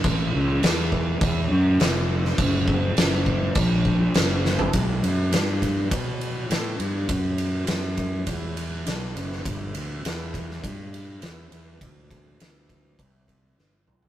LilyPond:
<<
  \new Staff \with { instrumentName = "Fingered electric bass" } { \clef bass \time 4/4 \key fis \phrygian \tempo 4 = 102 a,,8 cis,8 e,4 e,8 fis,8 eis,,4 | fis,,4 fis,,4 ais,,4 fis,,4 | \key b \phrygian b,,8 fis,8 g,4 b,4 a,8 g,8 | fis,4 fis,4 e,4 b,,8 fis,,8 |
g,,8 d,8 e,4 g,4 e,8 e,8 | d,4 d,4 c,4 g,,8 b,,8 | }
  \new DrumStaff \with { instrumentName = "Drums" } \drummode { \time 4/4 <cymc bd>4 <cymc sn>8 bd8 <cymc bd>4 <cymc sn>8. sn16 | <cymc bd>8 bd8 <cymc sn>8 bd8 <cymc bd>8 bd8 <cymc sn>8 sn16 tomfh16 | <bd cymr>8 cymr8 <cymr sn>8 <bd cymr>8 <bd cymr>8 cymr8 <cymr sn>8 cymr8 | <bd cymr>8 cymr8 <cymr sn>8 <bd cymr>8 <bd cymr>8 cymr8 <cymr sn>8 cymr16 sn16 |
<bd cymr>8 cymr8 <cymr sn>8 <bd cymr>16 sn16 <bd cymr>8 cymr8 <cymr sn>8 cymr8 | <bd cymr>8 <bd cymr>8 <cymr sn>8 <bd cymr>8 <bd cymr>8 <bd cymr>8 sn8 toml16 tomfh16 | }
>>